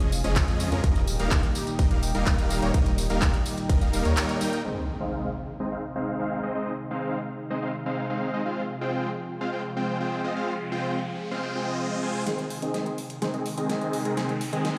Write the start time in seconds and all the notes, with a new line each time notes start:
Already playing: C#3 F3 G#3 F4 G#4
0.00 F1 F3 G#3 C#4 G#4 D#5, closed hi-hat
0.12 open hi-hat, tambourine
0.24 F1 F3 G#3 C#4 G#4 D#5, closed hi-hat, tambourine
0.36 kick, clap, closed hi-hat, ride, tambourine
0.48 F2 F3 G#3 C#4 G#4 D#5, closed hi-hat, tambourine
0.60 open hi-hat, tambourine
0.72 F2 F3 G#3 C#4 G#4 A#4, closed hi-hat, tambourine
0.84 D#1 A#2 D#3 G3 A#3 D#4 G4 A#4, kick, closed hi-hat, ride, tambourine
0.96 closed hi-hat, tambourine
1.07 open hi-hat, tambourine
1.19 D#1 G3 A#3 D#4 A#4 F5, closed hi-hat, tambourine
1.31 kick, clap, closed hi-hat, ride, tambourine
1.43 closed hi-hat
1.55 open hi-hat, tambourine
1.67 closed hi-hat, tambourine
1.79 D#1 G3 A#3 D#4 A#4 D#5, kick, closed hi-hat, ride, tambourine
1.91 D#1 G3 A#3 D#4 A#4 F5, closed hi-hat
2.03 open hi-hat, tambourine
2.15 D#1 G3 A#3 D#4 A#4 F5, closed hi-hat, tambourine
2.27 kick, clap, closed hi-hat, ride, tambourine
2.38 D#1 G3 A#3 D#4 A#4 F5, closed hi-hat, tambourine
2.50 open hi-hat, tambourine
2.62 D#1 G3 A#3 D#4 A#4 C#5, closed hi-hat, tambourine
2.74 D#1 G3 A#3 D#4 A#4, kick, closed hi-hat, ride, tambourine
2.86 closed hi-hat, tambourine
2.98 open hi-hat, tambourine
3.10 D#1 G3 A#3 D#4 A#4 F5, closed hi-hat, tambourine
3.22 kick, clap, closed hi-hat, ride, tambourine
3.34 closed hi-hat
3.46 open hi-hat, tambourine
3.58 closed hi-hat, tambourine
3.69 D#1 G3 A#3 D#4 A#4 D#5, kick, closed hi-hat, ride, tambourine
3.81 D#1 G3 A#3 D#4 A#4 F5, closed hi-hat, tambourine
3.93 D#1 G3 A#3 D#4 A#4 F5, open hi-hat, tambourine
4.05 D#2 G3 A#3 D#4 A#4 C#5, closed hi-hat, tambourine
4.17 clap, closed hi-hat, ride, tambourine
4.29 closed hi-hat, tambourine
4.41 G3 A#3 D#4 A#4 G5, open hi-hat, tambourine
4.53 closed hi-hat, tambourine
4.65 C3 D#3 G#3 C4 D#4 G#4 C5 D#5, impact
5.00 G#3 C4 D#4 C5 F5
5.60 G#3 C4 D#4 C5 D#5
5.72 G#3 C4 D#4 C5 F5
5.96 G#3 C4 D#4 C5 F5
6.19 G#3 C4 D#4 C5 F5
6.43 G#3 C4 D#4 C5 D#5
6.55 G#3 C4 D#4 C5 D#5
6.91 G#3 C4 D#4 C5 F5
7.50 G#3 C4 D#4 C5 D#5
7.62 G#3 C4 D#4 C5 F5
7.86 G#3 C4 D#4 C5 F5
8.10 G#3 C4 D#4 C5 F5
8.34 G#3 C4 D#4 C5 D#5
8.46 F3 G#3 C4 F4 C5 F5, riser
8.81 G#3 C4 F4 C5 G5
9.41 G#3 C4 F4 C5 F5
9.53 G#3 C4 F4 C5 G5
9.77 G#3 C4 F4 C5 G5
10.00 G#3 C4 F4 C5 G5
10.24 G#3 C4 F4 C5 D#5
10.36 G#3 C4 F4 C5 F5
10.72 G#3 C4 F4 C5 G5
11.31 G#3 C4 F4 C5 F5
11.43 G#3 C4 F4 C5 G5
11.55 G#3 C4 F4 C5 G5
11.67 G#3 C4 F4 C5 D#5
12.03 G#3 C4 F4 C5 G#5
12.26 C3 D#3 G#3 C4 D#4 G#4 C5, snare, closed hi-hat, riser
12.38 closed hi-hat
12.50 open hi-hat
12.62 D#3 G#3 C4 G#4 D#5, closed hi-hat
12.74 snare, closed hi-hat
12.86 closed hi-hat
12.98 open hi-hat
13.10 closed hi-hat
13.22 D#3 G#3 C4 G#4 C5, snare, closed hi-hat
13.34 D#3 G#3 C4 G#4 D#5, closed hi-hat
13.46 open hi-hat
13.58 D#3 G#3 C4 G#4 D#5, closed hi-hat
13.69 snare, closed hi-hat
13.81 D#3 G#3 C4 G#4 D#5, closed hi-hat
13.93 open hi-hat
14.05 D#3 G#3 C4 G#4 A#4, closed hi-hat
14.17 D#3 G#3 C4 G#4 C5, snare, closed hi-hat
14.29 closed hi-hat
14.41 open hi-hat
14.53 D#3 G#3 C4 G#4 D#5, closed hi-hat
14.65 snare, closed hi-hat